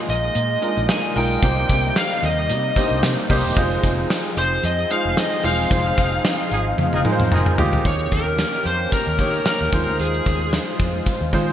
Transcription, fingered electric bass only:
0.09 0.29 A#1 medium
0.36 0.56 A#2 loud
0.77 0.86 A#1 medium
1.16 1.36 B1 medium
1.43 1.63 C2 loud
1.70 1.90 C2 medium
2.23 2.51 D#2 loud
2.50 2.70 C3 loud
2.91 3.00 C2 medium
3.03 3.14 C3 loud
3.30 3.41 C2 medium
3.45 3.54 E1 medium
3.57 3.77 F1 loud
3.84 4.04 F1 loud
4.37 4.57 F1 medium
4.63 4.84 F2 loud
5.05 5.14 F1 loud
5.44 5.64 E1 loud
5.71 5.91 F1 loud
5.98 6.18 F1 medium
6.51 6.71 G#1 medium
6.78 6.89 F2 loud
6.93 7.02 F1 medium
7.20 7.29 F2 medium
7.32 7.43 F1 loud
7.58 7.78 D2 loud
7.85 8.05 D#2 loud
8.12 8.43 D#2 medium
8.65 8.86 F2 medium
9.07 9.20 D#2 medium
9.19 9.39 D#3 medium
9.61 9.70 D#2 medium
9.72 9.84 D#2 medium
9.87 9.96 D2 medium
9.99 10.19 D#2 medium
10.26 10.58 D#2 medium
10.80 11.00 F2 medium
11.21 11.30 D#2 medium
11.33 11.53 D#3 medium

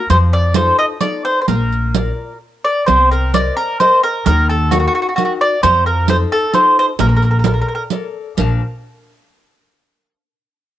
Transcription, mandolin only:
0.10 0.17 C5 loud
0.33 0.55 D5 loud
0.56 0.78 C5 medium
0.79 0.85 D#5 loud
1.01 1.23 D5 medium
1.25 1.40 C5 loud
1.42 1.48 C5 medium
1.48 2.37 A#4 medium
2.65 2.86 D5 loud
2.86 3.10 C5 medium
3.11 3.34 A#4 medium
3.34 3.56 D5 medium
3.57 3.78 A#4 loud
3.80 4.02 C5 medium
4.03 4.25 A#4 loud
4.26 4.48 A#4 loud
4.49 4.70 A4 medium
4.71 4.79 F#4 medium
4.80 4.86 F#4 medium
4.88 4.94 F#4 medium
4.95 5.01 F#4 medium
5.02 5.08 F#4 medium
5.09 5.15 F#4 medium
5.16 5.24 F#4 medium
5.25 5.32 F#4 medium
5.41 5.62 D5 loud
5.63 5.85 C5 loud
5.86 6.09 A#4 medium
6.10 6.16 C5 loud
6.32 6.54 A4 loud
6.54 6.76 C5 medium
6.79 6.85 C5 loud
7.00 7.07 A#4 medium
7.09 7.15 A#4 medium
7.17 7.23 A#4 medium
7.24 7.30 A#4 soft
7.31 7.37 A#4 soft
7.39 7.45 A#4 soft
7.47 7.53 A#4 medium
7.54 7.60 A#4 soft
7.61 7.67 A#4 medium
7.68 7.74 A#4 soft
7.75 7.82 A#4 medium

